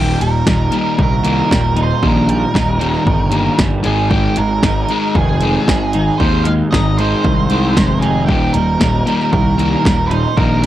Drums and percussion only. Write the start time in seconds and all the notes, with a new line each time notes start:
0.21 closed hi-hat
0.47 kick, snare
0.72 closed hi-hat
0.99 kick
1.25 closed hi-hat
1.51 kick, snare
1.77 closed hi-hat
2.03 kick
2.29 closed hi-hat
2.55 kick, snare
2.81 closed hi-hat
2.95 snare
3.07 kick
3.32 closed hi-hat
3.59 kick, snare
3.84 closed hi-hat
4.11 kick
4.36 closed hi-hat
4.63 kick, snare
4.89 closed hi-hat
5.15 kick
5.41 closed hi-hat
5.68 kick, snare
5.93 closed hi-hat
6.20 kick
6.45 closed hi-hat
6.73 kick, snare
6.99 closed hi-hat
7.24 kick
7.50 closed hi-hat
7.77 kick, snare
8.02 closed hi-hat
8.28 kick
8.54 closed hi-hat
8.81 kick, snare
9.07 closed hi-hat
9.21 snare
9.33 kick
9.59 closed hi-hat
9.85 kick, snare
10.11 closed hi-hat
10.37 kick